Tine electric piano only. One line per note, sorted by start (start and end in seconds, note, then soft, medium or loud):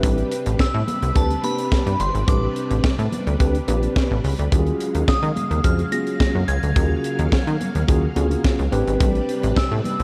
0.00 0.65 C4 loud
0.00 0.65 D4 loud
0.00 0.65 G4 medium
0.00 0.65 B4 loud
1.15 1.31 C4 medium
1.15 1.32 D4 medium
1.15 1.32 G4 medium
1.15 1.32 B4 medium
1.43 1.90 C4 medium
1.43 1.90 D4 medium
1.43 1.90 G4 medium
1.43 1.90 B4 medium
2.27 2.89 C4 medium
2.27 2.89 D4 medium
2.27 2.89 G4 medium
2.27 2.89 B4 medium
3.39 3.56 C4 medium
3.39 3.56 D4 medium
3.39 3.56 G4 medium
3.39 3.56 B4 loud
3.67 4.14 C4 medium
3.67 4.14 D4 medium
3.67 4.14 G4 medium
3.67 4.15 B4 medium
4.52 5.13 C#4 medium
4.52 5.14 F4 medium
4.52 5.14 F#4 medium
4.52 4.59 G4 medium
4.59 5.17 G#4 medium
5.64 5.80 C#4 medium
5.64 5.80 F4 medium
5.64 5.80 F#4 medium
5.64 5.80 G#4 medium
5.92 6.38 C#4 medium
5.92 6.39 F4 medium
5.92 6.39 F#4 medium
5.92 6.39 G#4 medium
6.76 7.38 C#4 medium
6.76 7.38 F4 medium
6.76 7.38 F#4 medium
6.76 7.38 G#4 medium
7.88 8.04 C#4 loud
7.88 8.04 F4 medium
7.88 8.04 F#4 medium
7.88 8.05 G#4 loud
8.16 8.63 C#4 medium
8.16 8.63 F4 medium
8.16 8.63 F#4 medium
8.16 8.63 G#4 medium
8.72 9.62 C4 loud
8.72 9.62 D4 loud
8.72 9.63 G4 loud
8.72 9.63 B4 loud